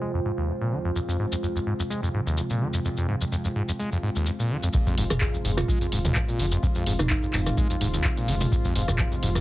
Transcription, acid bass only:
0.02 0.12 G#3 medium
0.14 0.20 F2 medium
0.25 0.32 G#2 medium
0.38 0.50 D#2 medium
0.49 0.53 F2 medium
0.61 0.74 A#2 medium
0.72 0.79 D#3 loud
0.85 0.91 F2 medium
0.96 1.00 F2 medium
1.08 1.18 F2 medium
1.19 1.26 G#2 medium
1.32 1.36 F2 medium
1.43 1.47 F2 medium
1.56 1.59 F2 medium
1.67 1.74 G#2 medium
1.79 1.83 F2 medium
1.90 2.01 G#3 medium
2.03 2.09 F2 medium
2.14 2.21 G#2 medium
2.27 2.39 D#2 medium
2.38 2.42 F2 medium
2.50 2.63 A#2 medium
2.61 2.68 D#3 loud
2.74 2.80 F2 medium
2.85 2.89 F2 medium
2.98 3.07 F2 medium
3.09 3.16 G#2 medium
3.21 3.25 F2 medium
3.32 3.36 F2 medium
3.45 3.48 F2 medium
3.56 3.63 G#2 medium
3.68 3.72 F2 medium
3.79 3.90 G#3 medium
3.92 3.98 F2 medium
4.03 4.10 G#2 medium
4.16 4.28 D#2 medium
4.27 4.31 F2 medium
4.39 4.52 A#2 medium
4.50 4.57 D#3 medium
4.63 4.69 F2 medium
4.74 4.78 F2 medium
4.87 4.96 F2 medium
4.98 5.05 G#2 medium
5.10 5.14 F2 medium
5.21 5.25 F2 medium
5.34 5.38 F2 medium
5.45 5.52 G#2 medium
5.57 5.61 F2 medium
5.68 5.79 G#3 medium
5.81 5.87 F2 medium
5.92 5.99 G#2 medium
6.05 6.17 D#2 medium
6.16 6.20 F2 medium
6.28 6.41 A#2 medium
6.39 6.46 D#3 loud
6.52 6.58 F2 medium
6.63 6.67 F2 medium
6.76 6.85 F2 medium
6.87 6.94 G#2 medium
6.99 7.03 F2 medium
7.10 7.14 F2 medium
7.23 7.26 F2 medium
7.34 7.41 G#2 medium
7.47 7.50 F2 medium
7.57 7.68 G#3 medium
7.70 7.76 F2 medium
7.81 7.88 G#2 medium
7.94 8.06 D#2 medium
8.05 8.09 F2 medium
8.17 8.30 A#2 medium
8.28 8.35 D#3 loud
8.41 8.47 F2 medium
8.52 8.56 F2 medium
8.65 8.74 F2 medium
8.76 8.83 G#2 medium
8.88 8.92 F2 medium
8.99 9.03 F2 medium
9.12 9.16 F2 medium
9.23 9.30 G#2 medium
9.36 9.39 F2 medium

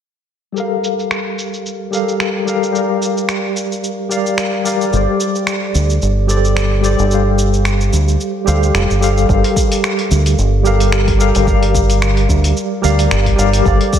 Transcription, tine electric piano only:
0.52 1.88 G3 medium
0.52 1.89 G4 medium
0.52 1.90 A4 medium
0.58 1.91 A#4 medium
0.58 1.92 F5 medium
1.91 2.43 G3 medium
1.91 2.44 G4 medium
1.91 2.44 A4 medium
1.91 2.45 A#4 medium
1.91 2.45 F5 medium
2.46 2.59 G3 medium
2.46 2.59 G4 medium
2.46 2.60 A4 medium
2.46 2.60 A#4 medium
2.46 2.61 F5 medium
2.71 4.06 G3 medium
2.71 4.07 G4 medium
2.71 4.08 A#4 medium
2.76 4.09 D5 medium
2.76 4.10 F5 medium
4.09 4.62 G3 medium
4.09 4.62 G4 medium
4.09 4.62 A#4 medium
4.09 4.63 D5 medium
4.09 4.63 F5 loud
4.64 4.77 G3 medium
4.64 4.77 G4 medium
4.64 4.78 A#4 medium
4.64 4.78 D5 medium
4.64 4.79 F5 medium
4.89 6.25 G3 medium
4.89 6.25 G4 medium
4.89 6.26 A4 medium
4.95 6.28 C5 medium
4.95 6.28 D5 medium
6.27 6.80 G3 medium
6.27 6.80 G4 medium
6.27 6.81 A4 medium
6.27 6.81 C5 medium
6.27 6.82 D5 loud
6.81 6.95 G3 medium
6.81 6.96 G4 medium
6.81 6.96 A4 medium
6.81 6.96 C5 medium
6.81 6.97 D5 medium
7.07 8.42 G3 medium
7.07 8.43 G4 medium
7.07 8.44 A4 medium
7.12 8.45 C5 medium
7.12 8.46 F5 medium
8.45 8.98 G3 medium
8.45 8.98 G4 medium
8.45 8.99 A4 medium
8.45 8.99 C5 medium
8.45 8.99 F5 medium
9.00 9.13 G3 medium
9.00 9.14 G4 medium
9.00 9.14 A4 medium
9.00 9.15 C5 medium
9.00 9.15 F5 medium
9.26 10.61 G3 medium
9.26 10.62 G4 medium
9.26 10.63 A4 medium
9.31 10.63 A#4 medium
9.31 10.65 F5 medium
10.63 11.16 G3 medium
10.63 11.17 G4 medium
10.63 11.17 A4 medium
10.63 11.18 A#4 medium
10.63 11.18 F5 medium
11.18 11.31 G3 medium
11.18 11.32 G4 medium
11.18 11.32 A4 medium
11.18 11.33 A#4 medium
11.18 11.33 F5 medium
11.43 12.79 G3 medium
11.43 12.80 G4 medium
11.43 12.80 A#4 medium
11.48 12.81 D5 medium
11.48 12.82 F5 medium
12.81 13.34 G3 medium
12.81 13.35 G4 medium
12.81 13.35 A#4 medium
12.81 13.35 D5 medium
12.81 13.36 F5 loud
13.36 13.49 G3 medium
13.36 13.50 G4 medium
13.36 13.50 A#4 medium
13.36 13.51 D5 medium
13.36 13.51 F5 medium
13.61 13.99 G3 medium
13.61 13.99 G4 medium
13.61 13.99 A4 medium
13.66 13.99 C5 medium
13.66 13.99 D5 medium

